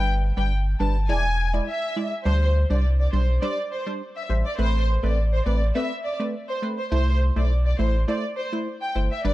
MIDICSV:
0, 0, Header, 1, 4, 480
1, 0, Start_track
1, 0, Tempo, 582524
1, 1860, Time_signature, 4, 2, 24, 8
1, 7694, End_track
2, 0, Start_track
2, 0, Title_t, "Violin section"
2, 0, Program_c, 0, 48
2, 305, Note_on_c, 0, 79, 85
2, 390, Note_off_c, 0, 79, 0
2, 658, Note_on_c, 0, 81, 75
2, 754, Note_off_c, 0, 81, 0
2, 899, Note_on_c, 0, 80, 105
2, 1244, Note_off_c, 0, 80, 0
2, 1379, Note_on_c, 0, 76, 83
2, 1725, Note_off_c, 0, 76, 0
2, 1859, Note_on_c, 0, 72, 95
2, 2040, Note_off_c, 0, 72, 0
2, 2228, Note_on_c, 0, 74, 72
2, 2312, Note_off_c, 0, 74, 0
2, 2467, Note_on_c, 0, 74, 74
2, 2552, Note_off_c, 0, 74, 0
2, 2580, Note_on_c, 0, 72, 80
2, 2675, Note_off_c, 0, 72, 0
2, 2819, Note_on_c, 0, 74, 82
2, 2915, Note_off_c, 0, 74, 0
2, 3059, Note_on_c, 0, 72, 74
2, 3155, Note_off_c, 0, 72, 0
2, 3427, Note_on_c, 0, 76, 76
2, 3512, Note_off_c, 0, 76, 0
2, 3667, Note_on_c, 0, 74, 82
2, 3752, Note_off_c, 0, 74, 0
2, 3781, Note_on_c, 0, 72, 106
2, 3960, Note_off_c, 0, 72, 0
2, 4147, Note_on_c, 0, 74, 72
2, 4232, Note_off_c, 0, 74, 0
2, 4388, Note_on_c, 0, 72, 77
2, 4472, Note_off_c, 0, 72, 0
2, 4500, Note_on_c, 0, 74, 76
2, 4595, Note_off_c, 0, 74, 0
2, 4740, Note_on_c, 0, 76, 87
2, 4835, Note_off_c, 0, 76, 0
2, 4980, Note_on_c, 0, 74, 78
2, 5075, Note_off_c, 0, 74, 0
2, 5348, Note_on_c, 0, 72, 82
2, 5432, Note_off_c, 0, 72, 0
2, 5587, Note_on_c, 0, 72, 76
2, 5672, Note_off_c, 0, 72, 0
2, 5699, Note_on_c, 0, 72, 104
2, 5879, Note_off_c, 0, 72, 0
2, 6066, Note_on_c, 0, 74, 77
2, 6151, Note_off_c, 0, 74, 0
2, 6306, Note_on_c, 0, 74, 78
2, 6391, Note_off_c, 0, 74, 0
2, 6418, Note_on_c, 0, 72, 77
2, 6514, Note_off_c, 0, 72, 0
2, 6659, Note_on_c, 0, 74, 79
2, 6755, Note_off_c, 0, 74, 0
2, 6899, Note_on_c, 0, 72, 85
2, 6995, Note_off_c, 0, 72, 0
2, 7266, Note_on_c, 0, 79, 77
2, 7351, Note_off_c, 0, 79, 0
2, 7505, Note_on_c, 0, 76, 76
2, 7591, Note_off_c, 0, 76, 0
2, 7618, Note_on_c, 0, 74, 103
2, 7694, Note_off_c, 0, 74, 0
2, 7694, End_track
3, 0, Start_track
3, 0, Title_t, "Synth stab"
3, 0, Program_c, 1, 62
3, 0, Note_on_c, 1, 55, 101
3, 0, Note_on_c, 1, 62, 92
3, 0, Note_on_c, 1, 71, 108
3, 275, Note_off_c, 1, 55, 0
3, 276, Note_off_c, 1, 62, 0
3, 277, Note_off_c, 1, 71, 0
3, 304, Note_on_c, 1, 55, 75
3, 306, Note_on_c, 1, 62, 68
3, 309, Note_on_c, 1, 71, 84
3, 429, Note_off_c, 1, 55, 0
3, 431, Note_off_c, 1, 62, 0
3, 432, Note_off_c, 1, 71, 0
3, 657, Note_on_c, 1, 55, 83
3, 659, Note_on_c, 1, 62, 75
3, 662, Note_on_c, 1, 71, 88
3, 795, Note_off_c, 1, 55, 0
3, 797, Note_off_c, 1, 62, 0
3, 798, Note_off_c, 1, 71, 0
3, 897, Note_on_c, 1, 56, 98
3, 899, Note_on_c, 1, 64, 87
3, 902, Note_on_c, 1, 74, 105
3, 1036, Note_off_c, 1, 56, 0
3, 1037, Note_off_c, 1, 64, 0
3, 1038, Note_off_c, 1, 74, 0
3, 1264, Note_on_c, 1, 56, 81
3, 1266, Note_on_c, 1, 64, 74
3, 1269, Note_on_c, 1, 74, 89
3, 1389, Note_off_c, 1, 56, 0
3, 1391, Note_off_c, 1, 64, 0
3, 1392, Note_off_c, 1, 74, 0
3, 1617, Note_on_c, 1, 56, 79
3, 1619, Note_on_c, 1, 64, 70
3, 1622, Note_on_c, 1, 74, 86
3, 1756, Note_off_c, 1, 56, 0
3, 1757, Note_off_c, 1, 64, 0
3, 1758, Note_off_c, 1, 74, 0
3, 1857, Note_on_c, 1, 55, 97
3, 1859, Note_on_c, 1, 62, 90
3, 1861, Note_on_c, 1, 72, 107
3, 2195, Note_off_c, 1, 55, 0
3, 2196, Note_off_c, 1, 62, 0
3, 2197, Note_off_c, 1, 72, 0
3, 2223, Note_on_c, 1, 55, 75
3, 2226, Note_on_c, 1, 62, 69
3, 2228, Note_on_c, 1, 72, 87
3, 2349, Note_off_c, 1, 55, 0
3, 2350, Note_off_c, 1, 62, 0
3, 2352, Note_off_c, 1, 72, 0
3, 2577, Note_on_c, 1, 55, 80
3, 2579, Note_on_c, 1, 62, 75
3, 2582, Note_on_c, 1, 72, 92
3, 2715, Note_off_c, 1, 55, 0
3, 2717, Note_off_c, 1, 62, 0
3, 2718, Note_off_c, 1, 72, 0
3, 2817, Note_on_c, 1, 55, 96
3, 2819, Note_on_c, 1, 62, 91
3, 2822, Note_on_c, 1, 72, 106
3, 2956, Note_off_c, 1, 55, 0
3, 2957, Note_off_c, 1, 62, 0
3, 2958, Note_off_c, 1, 72, 0
3, 3184, Note_on_c, 1, 55, 81
3, 3187, Note_on_c, 1, 62, 72
3, 3189, Note_on_c, 1, 72, 83
3, 3310, Note_off_c, 1, 55, 0
3, 3311, Note_off_c, 1, 62, 0
3, 3312, Note_off_c, 1, 72, 0
3, 3537, Note_on_c, 1, 55, 75
3, 3540, Note_on_c, 1, 62, 65
3, 3542, Note_on_c, 1, 72, 85
3, 3675, Note_off_c, 1, 55, 0
3, 3677, Note_off_c, 1, 62, 0
3, 3678, Note_off_c, 1, 72, 0
3, 3777, Note_on_c, 1, 57, 98
3, 3779, Note_on_c, 1, 60, 89
3, 3782, Note_on_c, 1, 71, 109
3, 4115, Note_off_c, 1, 57, 0
3, 4116, Note_off_c, 1, 60, 0
3, 4117, Note_off_c, 1, 71, 0
3, 4144, Note_on_c, 1, 57, 75
3, 4146, Note_on_c, 1, 60, 68
3, 4149, Note_on_c, 1, 71, 80
3, 4269, Note_off_c, 1, 57, 0
3, 4271, Note_off_c, 1, 60, 0
3, 4272, Note_off_c, 1, 71, 0
3, 4497, Note_on_c, 1, 57, 84
3, 4499, Note_on_c, 1, 60, 72
3, 4502, Note_on_c, 1, 71, 88
3, 4636, Note_off_c, 1, 57, 0
3, 4637, Note_off_c, 1, 60, 0
3, 4638, Note_off_c, 1, 71, 0
3, 4737, Note_on_c, 1, 57, 97
3, 4740, Note_on_c, 1, 60, 86
3, 4742, Note_on_c, 1, 71, 103
3, 4876, Note_off_c, 1, 57, 0
3, 4877, Note_off_c, 1, 60, 0
3, 4878, Note_off_c, 1, 71, 0
3, 5104, Note_on_c, 1, 57, 78
3, 5107, Note_on_c, 1, 60, 72
3, 5110, Note_on_c, 1, 71, 86
3, 5230, Note_off_c, 1, 57, 0
3, 5231, Note_off_c, 1, 60, 0
3, 5232, Note_off_c, 1, 71, 0
3, 5457, Note_on_c, 1, 57, 78
3, 5459, Note_on_c, 1, 60, 68
3, 5462, Note_on_c, 1, 71, 85
3, 5595, Note_off_c, 1, 57, 0
3, 5597, Note_off_c, 1, 60, 0
3, 5598, Note_off_c, 1, 71, 0
3, 5697, Note_on_c, 1, 57, 93
3, 5700, Note_on_c, 1, 64, 91
3, 5702, Note_on_c, 1, 72, 110
3, 6035, Note_off_c, 1, 57, 0
3, 6036, Note_off_c, 1, 64, 0
3, 6037, Note_off_c, 1, 72, 0
3, 6064, Note_on_c, 1, 57, 78
3, 6067, Note_on_c, 1, 64, 69
3, 6069, Note_on_c, 1, 72, 81
3, 6189, Note_off_c, 1, 57, 0
3, 6191, Note_off_c, 1, 64, 0
3, 6192, Note_off_c, 1, 72, 0
3, 6416, Note_on_c, 1, 57, 78
3, 6419, Note_on_c, 1, 64, 70
3, 6421, Note_on_c, 1, 72, 87
3, 6555, Note_off_c, 1, 57, 0
3, 6556, Note_off_c, 1, 64, 0
3, 6558, Note_off_c, 1, 72, 0
3, 6657, Note_on_c, 1, 57, 98
3, 6659, Note_on_c, 1, 64, 85
3, 6661, Note_on_c, 1, 72, 102
3, 6795, Note_off_c, 1, 57, 0
3, 6797, Note_off_c, 1, 64, 0
3, 6798, Note_off_c, 1, 72, 0
3, 7024, Note_on_c, 1, 57, 77
3, 7026, Note_on_c, 1, 64, 71
3, 7028, Note_on_c, 1, 72, 90
3, 7149, Note_off_c, 1, 57, 0
3, 7151, Note_off_c, 1, 64, 0
3, 7152, Note_off_c, 1, 72, 0
3, 7376, Note_on_c, 1, 57, 74
3, 7379, Note_on_c, 1, 64, 66
3, 7381, Note_on_c, 1, 72, 87
3, 7515, Note_off_c, 1, 57, 0
3, 7516, Note_off_c, 1, 64, 0
3, 7518, Note_off_c, 1, 72, 0
3, 7616, Note_on_c, 1, 55, 100
3, 7618, Note_on_c, 1, 62, 87
3, 7621, Note_on_c, 1, 71, 106
3, 7694, Note_off_c, 1, 55, 0
3, 7694, Note_off_c, 1, 62, 0
3, 7694, Note_off_c, 1, 71, 0
3, 7694, End_track
4, 0, Start_track
4, 0, Title_t, "Sub bass"
4, 0, Program_c, 2, 38
4, 0, Note_on_c, 2, 31, 106
4, 261, Note_off_c, 2, 31, 0
4, 307, Note_on_c, 2, 31, 89
4, 616, Note_off_c, 2, 31, 0
4, 659, Note_on_c, 2, 31, 88
4, 899, Note_on_c, 2, 28, 107
4, 911, Note_off_c, 2, 31, 0
4, 1319, Note_off_c, 2, 28, 0
4, 1859, Note_on_c, 2, 38, 110
4, 2180, Note_off_c, 2, 38, 0
4, 2226, Note_on_c, 2, 36, 93
4, 2535, Note_off_c, 2, 36, 0
4, 2579, Note_on_c, 2, 35, 93
4, 2789, Note_off_c, 2, 35, 0
4, 3539, Note_on_c, 2, 33, 86
4, 3651, Note_off_c, 2, 33, 0
4, 3779, Note_on_c, 2, 33, 104
4, 4101, Note_off_c, 2, 33, 0
4, 4147, Note_on_c, 2, 33, 92
4, 4456, Note_off_c, 2, 33, 0
4, 4499, Note_on_c, 2, 33, 94
4, 4709, Note_off_c, 2, 33, 0
4, 5699, Note_on_c, 2, 36, 103
4, 6021, Note_off_c, 2, 36, 0
4, 6066, Note_on_c, 2, 35, 88
4, 6375, Note_off_c, 2, 35, 0
4, 6419, Note_on_c, 2, 33, 93
4, 6629, Note_off_c, 2, 33, 0
4, 7379, Note_on_c, 2, 31, 88
4, 7491, Note_off_c, 2, 31, 0
4, 7619, Note_on_c, 2, 31, 103
4, 7694, Note_off_c, 2, 31, 0
4, 7694, End_track
0, 0, End_of_file